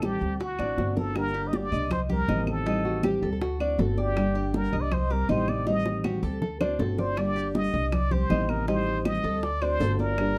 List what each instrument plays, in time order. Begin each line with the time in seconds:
Already playing: upright bass A1
0.02 nylon-string guitar D#3 G3 C4 G4, muted trumpet G4, cuban tres A4, high bongo, high conga, claves
0.21 upright bass D2, nylon-string guitar G3 C4 G4, high bongo
0.40 cuban tres F#4, muted trumpet F#4, muted nylon-string guitar stroke, high bongo, high conga
0.58 upright bass A1, nylon-string guitar A3 C4 F#4, cuban tres D4, high bongo, high conga, claves
0.77 upright bass G1, nylon-string guitar D3 A3 C4 F#4, high bongo, high conga
0.96 muted trumpet A4, cuban tres A#4, low bongo, high conga
1.15 nylon-string guitar D3 G3 A#3 D4 G4, muted trumpet A#4, high bongo, high conga, claves
1.34 cuban tres G4, high bongo, high conga
1.48 muted trumpet D#5
1.52 nylon-string guitar D3 G3 A#3 D4 G4, muted trumpet D5, high bongo, high conga
1.72 upright bass C2, nylon-string guitar A#3 D4, cuban tres D#5, high conga
1.90 muted trumpet C5, muted nylon-string guitar stroke, high bongo, high conga, low conga, claves
2.09 nylon-string guitar G3 C4 G4, cuban tres G4, muted trumpet A#4, high bongo, high conga, low conga
2.28 upright bass A1, nylon-string guitar C3 D#3 G3 C4 G4, cuban tres D#4, high bongo, low bongo, high conga
2.47 muted trumpet A4, high bongo, high conga, claves
2.66 nylon-string guitar D#3 G3 C4 G4, cuban tres D#4, high bongo, high conga
2.85 nylon-string guitar F#4, high bongo, high conga
3.03 nylon-string guitar D#3 G3 C4 G4, cuban tres G4, high bongo, high conga, claves
3.22 upright bass D2, nylon-string guitar G3 C4 G4, cuban tres A4, high conga
3.33 nylon-string guitar A4
3.40 nylon-string guitar F#4, muted nylon-string guitar stroke, high bongo, high conga
3.59 nylon-string guitar A3 C4 F#4, cuban tres D4, high bongo, high conga, claves
3.78 upright bass G1, nylon-string guitar D3 A3 C4 F#4, cuban tres A4, high bongo, low bongo, high conga
3.97 muted trumpet G4, cuban tres D5, high bongo, high conga
4.16 nylon-string guitar D3 G3 A#3 D4 G4, high bongo, high conga, claves
4.35 cuban tres G4, high bongo, high conga
4.54 nylon-string guitar D3 G3 A#3 D4 G4, muted trumpet A#4, high bongo, high conga
4.73 upright bass C2, nylon-string guitar A#3 D4 G4, cuban tres D#5, high conga
4.81 muted trumpet D5
4.91 muted trumpet C5, muted nylon-string guitar stroke, high bongo, high conga, low conga, claves
5.10 nylon-string guitar G3 C4 G4, cuban tres G4, muted trumpet A#4, high bongo, high conga
5.29 upright bass A1, nylon-string guitar C3 D#3 G3 C4 G4, cuban tres D#4, muted trumpet C5, high bongo, low bongo, high conga
5.48 muted trumpet D5, high bongo, high conga, claves
5.67 nylon-string guitar D#3 G3 C4 G4, cuban tres D#4, muted trumpet D#5, high bongo, high conga
5.86 high bongo, high conga
6.04 nylon-string guitar D#3 G3 C4 F#4 G4, cuban tres G4, high bongo, high conga, claves
6.23 upright bass D2, nylon-string guitar G3 C4 G4, cuban tres A4, high conga
6.42 nylon-string guitar A4, muted nylon-string guitar stroke, low bongo, high conga
6.61 nylon-string guitar A3 C4 F#4 C5, cuban tres D4, low bongo, high conga, claves
6.79 upright bass G1, nylon-string guitar D3 A3 C4 F#4, cuban tres A4, low bongo, high conga
6.98 muted trumpet C5, cuban tres D5, low bongo
7.17 nylon-string guitar D3 G3 A#3 D4 G4, muted trumpet D5, high bongo, claves
7.36 cuban tres G4, high bongo, high conga
7.54 nylon-string guitar D3 G3 A#3 D4 G4, muted trumpet D#5, high bongo, high conga
7.73 upright bass C2, nylon-string guitar A#3 D4 G4, cuban tres D#5, high conga
7.92 muted trumpet D5, muted nylon-string guitar stroke, high bongo, high conga, low conga, claves
8.11 nylon-string guitar G3 C4 G4, cuban tres G4, muted trumpet C5, high bongo, high conga, low conga
8.30 upright bass A1, nylon-string guitar C3 D#3 G3 C4 G4, cuban tres D#4, high bongo, low bongo, high conga
8.49 muted trumpet A#4, high bongo, high conga, claves
8.67 nylon-string guitar D#3 G3 C4 G4, cuban tres D#4, muted trumpet C5, high bongo
8.86 high bongo, high conga
9.05 nylon-string guitar D#3 G3 C4 G4, cuban tres G4, muted trumpet D#5, high bongo, high conga, claves
9.23 upright bass D2, nylon-string guitar G3 C4 G4, cuban tres A4, high conga
9.42 muted trumpet D5, muted nylon-string guitar stroke, high bongo, high conga
9.61 nylon-string guitar A3 C4 F#4, cuban tres D4, muted trumpet C5, high bongo, high conga, claves
9.80 upright bass G1, nylon-string guitar D3 A3 C4 F#4, cuban tres A4, high bongo, low bongo, high conga
9.99 muted trumpet A#4, cuban tres D5, high bongo, high conga
10.18 nylon-string guitar D3 G3 A#3 D4 G4, high bongo, high conga, claves